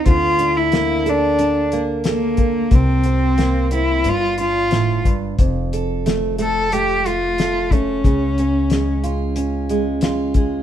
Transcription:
<<
  \new Staff \with { instrumentName = "Cello" } { \time 4/4 \key f \major \tempo 4 = 90 f'8. e'8. d'4 r8 bes4 | c'4. e'8 f'8 f'4 r8 | r4. a'8 g'8 f'4 des'8~ | des'4. r2 r8 | }
  \new Staff \with { instrumentName = "Steel-string acoustic guitar" } { \time 4/4 \key f \major << { r8 d'8 bes8 a'8 d'8 bes8 a'8 bes8 | r8 c'8 bes8 c'8 r8 d'4. | r8 a'8 a8 a8 a8 a8 a8 a8 | r8 des'8 aes8 f'8 des'8 aes8 f'8 aes8 | } \\ { d1 | c2 g,4 a,8 g,8 | f,1 | des1 | } >> }
  \new Staff \with { instrumentName = "Upright bass" } { \clef bass \time 4/4 \key f \major d,1 | c,2 g,,2 | f,,1 | des,1 | }
  \new DrumStaff \with { instrumentName = "Drums" } \drummode { \time 4/4 <hh bd>8 hh8 <hh sn>8 hh8 hh8 hh8 <hh sn>8 <hh bd>8 | <hh bd>8 hh8 <hh sn>8 hh8 hh8 hh8 <hh sn>8 <hh bd>8 | <hh bd>8 hh8 <hh sn>8 hh8 hh8 hh8 <hh sn>8 <hh bd>8 | <hh bd>8 hh8 <hh sn>8 hh8 hh8 hh8 <hh sn>8 <hh bd>8 | }
>>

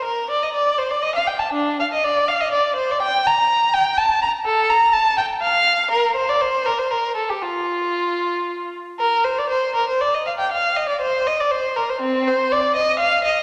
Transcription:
\new Staff \with { instrumentName = "Violin" } { \time 3/4 \key bes \major \tempo 4 = 121 bes'8 d''16 ees''16 d''8 c''16 d''16 ees''16 f''16 g''16 a''16 | d'8 f''16 ees''16 d''8 f''16 ees''16 d''8 c''16 d''16 | g''8 bes''4 g''8 a''8 bes''8 | a'8 bes''8 a''8 g''8 f''4 |
bes'8 c''16 d''16 c''8 bes'16 c''16 bes'8 a'16 g'16 | f'2~ f'8 r8 | bes'8 c''16 d''16 c''8 bes'16 c''16 d''16 ees''16 f''16 g''16 | f''8 ees''16 d''16 c''8 ees''16 d''16 c''8 bes'16 c''16 |
c'8 c''8 d''8 ees''8 f''8 ees''8 | }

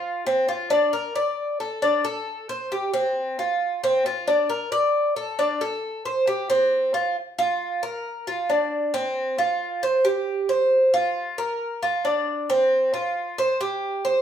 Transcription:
\new Staff \with { instrumentName = "Cuban tres" } { \time 4/4 \key f \major \tempo 4 = 135 f'8 c'8 f'8 d'8 bes'8 d''4 a'8 | d'8 a'4 c''8 g'8 c'4 f'8~ | f'8 c'8 f'8 d'8 bes'8 d''4 a'8 | d'8 a'4 c''8 g'8 c'4 f'8 |
r8 f'4 bes'4 f'8 d'4 | c'4 f'4 c''8 g'4 c''8~ | c''8 f'4 bes'4 f'8 d'4 | c'4 f'4 c''8 g'4 c''8 | }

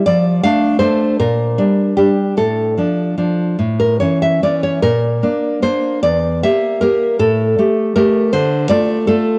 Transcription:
\new Staff \with { instrumentName = "Nylon-string guitar" } { \time 6/8 \key d \minor \tempo 4. = 51 << { d''8 f''8 c''8 bes'4 g'8 | a'4. r16 bes'16 cis''16 e''16 d''16 cis''16 | bes'4 c''8 d''8 e''8 bes'8 | a'4 bes'8 c''8 d''8 a'8 | } \\ { f8 <a d'>8 <a d'>8 bes,8 <g d'>8 <g d'>8 | a,8 <f d'>8 <f d'>8 a,8 <e cis'>8 <e cis'>8 | bes,8 <bes d'>8 <bes d'>8 e,8 <bes g'>8 <bes g'>8 | a,8 <a g'>8 <a g'>8 d8 <a f'>8 <a f'>8 | } >> }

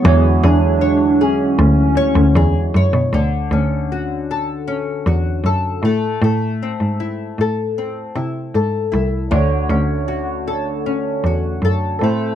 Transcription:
<<
  \new Staff \with { instrumentName = "Nylon-string guitar" } { \time 4/4 \key d \lydian \tempo 4 = 78 <e gis' cis''>8 gis'8 cis''8 gis'4 cis''8 gis'8 cis''8 | d8 cis'8 fis'8 a'8 cis'8 fis'8 a'8 a8 | a8 c'8 e'8 a'8 c'8 e'8 a'8 e'8 | d8 cis'8 fis'8 a'8 cis'8 fis'8 a'8 a8 | }
  \new Staff \with { instrumentName = "Synth keys" } { \time 4/4 \key d \lydian <d fis gis e' fis' cis''>1 | r1 | r1 | <a d' fis' cis''>2.~ <a d' fis' cis''>8 <c' e' a' c''>8 | }
  \new Staff \with { instrumentName = "Soft synth lead" } { \time 4/4 \key d \lydian b8 d'4 cis'8 cis'4. r8 | r1 | r1 | r1 | }
  \new Staff \with { instrumentName = "Cello" } { \clef bass \time 4/4 \key d \lydian e,8 e,4. d,8 d,16 d,16 e,16 r16 fis,16 b,16 | d,8 d,2 e,8 fis,8 a,8 | a,8. gis,8. a,4 c8 gis,8 c,8 | d,8 d,2 e,8 fis,8 a,8 | }
>>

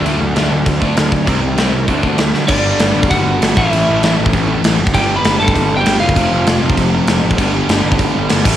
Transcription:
<<
  \new Staff \with { instrumentName = "Lead electric guitar" } { \time 4/4 \key d \mixolydian \tempo 4 = 196 r1 | r1 | \key a \mixolydian <d' d''>2 <fis' fis''>4. <e' e''>8~ | <e' e''>4. r2 r8 |
<g' g''>8. <b' b''>8. <a' a''>4~ <a' a''>16 <g' g''>8. <f' f''>8~ | <f' f''>4. r2 r8 | r1 | }
  \new Staff \with { instrumentName = "Overdriven electric guitar" } { \clef bass \time 4/4 \key d \mixolydian <d fis a>8 <d fis>8 <d fis a>8 <d fis>8 <d fis>8 <d fis a>8 <d fis>8 <d fis>8 | <c g c'>8 <c g>8 <c g c'>8 <c g>8 <d a c'>8 <d a c'>8 <d a>8 <d a>8 | \key a \mixolydian <g, d g b d'>2.~ <g, d g b d'>8 <a, e a cis' e'>8~ | <a, e a cis' e'>2.~ <a, e a cis' e'>8 r8 |
<g, d g b d'>1 | <f, c f a c'>1 | <g, d g b d'>2.~ <g, d g b d'>8 <a, e a cis' e'>8 | }
  \new Staff \with { instrumentName = "Distorted electric guitar" } { \clef bass \time 4/4 \key d \mixolydian <d a d'>8 <d a>8 <d a d'>8 <d a>8 <d a>8 <d a d'>8 <d a>8 <d a>8 | <c g c'>8 <c g>8 <c g c'>8 <c g>8 <d a d'>8 <d a d'>8 <d a>8 <d a>8 | \key a \mixolydian <g, d g>2.~ <g, d g>8 <a, e a>8~ | <a, e a>2.~ <a, e a>8 r8 |
<g, d g>1 | <f, c f>1 | <g, d g>2.~ <g, d g>8 <a, e a>8 | }
  \new Staff \with { instrumentName = "Distorted electric guitar" } { \clef bass \time 4/4 \key d \mixolydian <d a d'>4 <d a d'>2~ <d a d'>8 r8 | <c g c'>4. <c g c'>8 <d a d'>4. <d a d'>8 | \key a \mixolydian <g, d g>4. <g, d g>2 <a, e a>8~ | <a, e a>4 <a, e a>2~ <a, e a>8 r8 |
<g, d g>4. <g, d g>2~ <g, d g>8 | <f, c f>4. <f, c f>2~ <f, c f>8 | <g, d g>4. <g, d g>2 <a, e a>8 | }
  \new Staff \with { instrumentName = "Picked electric bass" } { \clef bass \time 4/4 \key d \mixolydian d,8 d,8 d,8 d,8 d,8 d,8 d,8 d,8 | c,8 c,8 c,8 c,8 d,8 d,8 d,8 d,8 | \key a \mixolydian g,,4 g,,8 g,,8 g,,8 g,,8 g,,8 a,,8 | a,,8 a,,8 a,,8 a,,8 a,,4 a,,8 fis,,8 |
g,,4 g,,8 g,,8 g,,8 g,,8 g,,8 fis,,8 | f,,8 f,,8 f,,8 f,,8 f,,4 f,,8 a,,8 | g,,4 g,,8 g,,8 g,,8 g,,8 g,,8 a,,8 | }
  \new DrumStaff \with { instrumentName = "Drums" } \drummode { \time 4/4 cymc4 <cymc sn>4 <cymc bd>8 bd8 <cymc sn>8 bd8 | <cymc bd>4 <cymc sn>4 <cymc bd>8 bd8 <cymc sn>8 sn8 | <cymc bd>4 <cymc sn>8. bd16 <cymc bd>4 <cymc sn>8 bd8 | cymc4 <cymc sn>8. bd16 <cymc bd>4 <cymc sn>8. bd16 |
<cymc bd>4 <cymc sn>8. bd16 <cymc bd>4 <cymc sn>8. bd16 | <cymc bd>4 <cymc sn>8. bd16 <cymc bd>4 <cymc sn>8. bd16 | <cymc bd>4 <cymc sn>8. bd16 <cymc bd>4 <cymc sn>8 <cymc bd>8 | }
>>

